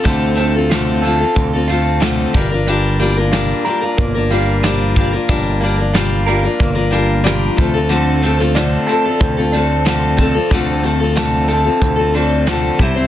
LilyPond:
<<
  \new Staff \with { instrumentName = "Steel-string acoustic guitar" } { \time 4/4 \key d \minor \tempo 4 = 92 <d a c' f' a'>8 <a c' f' a'>16 <c' f' a'>16 <d a c' f' a'>8 <a c' f' a'>16 <c' f' a'>8 <c' f' a'>16 <a c' f' a'>8 <d a c' f' a'>8 <g d' f' bes'>16 <d' f' bes'>16 | <g d' f' bes'>8 <g d' f' bes'>16 <d' f' bes'>16 <g d' f' bes'>8 <g d' f' bes'>16 <d' f' bes'>8 <d' f' bes'>16 <g d' f' bes'>8 <g d' f' bes'>8 <g d' f' bes'>16 <d' f' bes'>16 | <g d' f' bes'>8 <g d' f' bes'>16 <d' f' bes'>16 <g d' f' bes'>8 <g d' f' bes'>16 <d' f' bes'>8 <d' f' bes'>16 <g d' f' bes'>8 <g d' f' bes'>8 <a c' f' a'>16 <c' f' a'>16 | <d a c' f' a'>8 <a c' f' a'>16 <c' f' a'>16 <d a c' f' a'>8 <a c' f' a'>16 <c' f' a'>8 <c' f' a'>16 <a c' f' a'>8 <d a c' f' a'>8 <a c' f' a'>16 <c' f' a'>16 |
<d a c' f' a'>8 <a c' f' a'>16 <c' f' a'>16 <d a c' f' a'>8 <a c' f' a'>16 <c' f' a'>8 <c' f' a'>16 <a c' f' a'>8 <d a c' f' a'>8 <g c' e' c''>16 <g c' e' c''>16 | }
  \new Staff \with { instrumentName = "Clean electric guitar" } { \time 4/4 \key d \minor <d c' f'>8 c'8 f'8 a'8 c'8 f'8 d8 g,8 | g,8 bes8 f'8 bes'8 bes8 f'8 f8 bes8 | g,8 bes8 f'8 bes'8 bes8 f'8 f8 d8 | d8 c'8 d'8 a'8 c'8 d'8 f8 c'8 |
d8 c'8 d'8 a'8 c'8 d'8 f8 c8 | }
  \new Staff \with { instrumentName = "Picked electric bass" } { \clef bass \time 4/4 \key d \minor d,2 d,4. g,,8~ | g,,4. r8 g,,2 | g,,2 g,,4. d,8~ | d,4. r8 d,2 |
d,2 d,4. c,8 | }
  \new DrumStaff \with { instrumentName = "Drums" } \drummode { \time 4/4 <hh bd>8 hh8 <hh sn>8 hh8 <hh bd>8 hh8 <hh sn>8 <hh bd>8 | hh8 hh8 <hh sn>8 hh8 <hh bd>8 hh8 <hh sn>8 <hh bd>8 | <hh bd>8 hh8 <hh sn>8 hh8 <hh bd>8 hh8 <hh sn>8 <hh bd>8 | hh8 hh16 sn16 <hh sn>8 hh8 <hh bd>8 hh8 <hh sn>8 <hh bd>8 |
<hh bd>8 hh8 <hh sn>8 hh8 <hh bd>8 hh8 <hh sn>8 <hh bd>8 | }
>>